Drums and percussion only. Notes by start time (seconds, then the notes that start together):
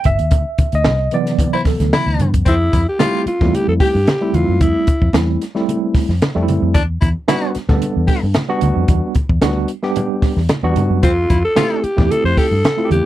0.04 kick, closed hi-hat, high conga
0.19 closed hi-hat
0.31 kick, closed hi-hat, muted conga
0.58 kick, closed hi-hat, muted conga
0.72 closed hi-hat
0.84 snare, high conga
1.11 closed hi-hat
1.26 snare, closed hi-hat
1.39 kick, closed hi-hat, muted conga, low conga
1.65 kick, snare, open hi-hat
1.80 snare, closed hi-hat
1.93 snare, high conga
2.20 closed hi-hat, high conga
2.34 kick, closed hi-hat
2.46 kick, closed hi-hat, muted conga
2.73 kick, closed hi-hat, muted conga
3.00 snare, closed hi-hat, high conga
3.27 closed hi-hat
3.41 kick, snare, low conga
3.55 closed hi-hat, muted conga
3.80 kick, open hi-hat
4.07 snare, closed hi-hat, high conga
4.34 closed hi-hat, high conga
4.61 kick, closed hi-hat, muted conga
4.87 kick, closed hi-hat, muted conga
5.02 kick
5.13 snare, closed hi-hat, high conga
5.42 snare, closed hi-hat
5.56 snare
5.69 closed hi-hat, muted conga
5.95 kick, snare, open hi-hat, muted conga
6.09 snare
6.22 snare, closed hi-hat, high conga
6.48 closed hi-hat, high conga
6.75 kick, closed hi-hat, muted conga
7.02 kick, closed hi-hat, muted conga
7.28 snare, closed hi-hat, high conga
7.55 snare, closed hi-hat
7.69 kick, snare, low conga
7.82 closed hi-hat, muted conga
8.08 kick, open hi-hat, muted conga
8.34 snare, closed hi-hat, high conga
8.61 closed hi-hat, high conga
8.88 kick, closed hi-hat, muted conga
9.15 kick, closed hi-hat, muted conga
9.29 kick
9.42 snare, closed hi-hat, high conga
9.68 closed hi-hat
9.83 snare
9.96 closed hi-hat, muted conga, low conga
10.22 kick, snare, open hi-hat, muted conga
10.37 snare
10.49 snare, closed hi-hat, high conga
10.76 closed hi-hat, high conga
11.03 kick, closed hi-hat, muted conga
11.30 kick, closed hi-hat, muted conga
11.56 snare, closed hi-hat, high conga
11.84 closed hi-hat
11.98 kick, snare, low conga
12.11 closed hi-hat, muted conga
12.37 kick, open hi-hat, muted conga
12.65 snare, closed hi-hat, high conga
12.91 closed hi-hat, high conga